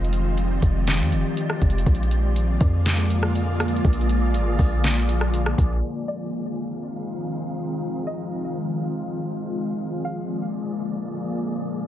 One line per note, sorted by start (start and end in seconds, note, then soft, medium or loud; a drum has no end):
0.00 0.59 F1 loud
0.00 1.82 D#3 medium
0.00 1.82 F3 medium
0.00 1.82 G#3 medium
0.00 1.82 C4 medium
0.00 1.82 F4 medium
0.00 1.84 G4 medium
0.00 5.79 D5 medium
0.05 closed hi-hat medium
0.13 closed hi-hat medium
0.38 closed hi-hat medium
0.62 1.01 F1 loud
0.62 kick loud
0.62 closed hi-hat medium
0.87 snare loud
0.87 closed hi-hat medium
1.00 1.14 F2 loud
1.12 1.24 F1 loud
1.12 closed hi-hat medium
1.37 closed hi-hat medium
1.50 cross-stick medium
1.62 1.85 F1 loud
1.62 kick loud
1.62 closed hi-hat medium
1.70 closed hi-hat medium
1.78 closed hi-hat medium
1.86 2.58 A#1 loud
1.86 5.79 D3 medium
1.86 5.79 F3 medium
1.86 5.79 G#3 medium
1.86 5.79 A#3 medium
1.86 5.79 F4 medium
1.86 5.79 G#4 medium
1.86 kick loud
1.86 closed hi-hat medium
1.95 closed hi-hat medium
2.03 closed hi-hat medium
2.11 closed hi-hat medium
2.36 closed hi-hat medium
2.61 3.81 F2 loud
2.61 kick loud
2.61 closed hi-hat medium
2.86 snare loud
2.86 closed hi-hat medium
3.10 closed hi-hat medium
3.23 cross-stick medium
3.35 closed hi-hat medium
3.60 cross-stick loud
3.60 closed hi-hat medium
3.68 closed hi-hat medium
3.76 closed hi-hat medium
3.85 4.36 A#1 loud
3.85 kick loud
3.85 closed hi-hat medium
3.93 closed hi-hat medium
4.01 closed hi-hat medium
4.09 closed hi-hat medium
4.34 4.58 G#1 loud
4.34 closed hi-hat medium
4.59 5.54 A#1 loud
4.59 kick loud
4.59 open hi-hat soft
4.84 snare loud
4.84 closed hi-hat medium
5.09 closed hi-hat medium
5.21 cross-stick medium
5.34 closed hi-hat medium
5.46 cross-stick loud
5.58 5.82 A#1 loud
5.58 kick loud
5.58 closed hi-hat medium
5.83 9.76 D#3 medium
5.83 11.87 F3 medium
5.83 11.87 G#3 medium
5.83 9.76 C4 medium
5.83 9.76 D#4 medium
5.83 11.74 F4 medium
5.83 11.87 G#4 medium
5.83 9.76 F5 medium
6.08 6.78 D5 medium
8.07 8.77 D#5 medium
9.80 11.87 D3 medium
9.80 11.87 A#3 medium
9.80 11.87 D5 medium
10.05 10.75 F5 medium
11.78 11.87 G5 medium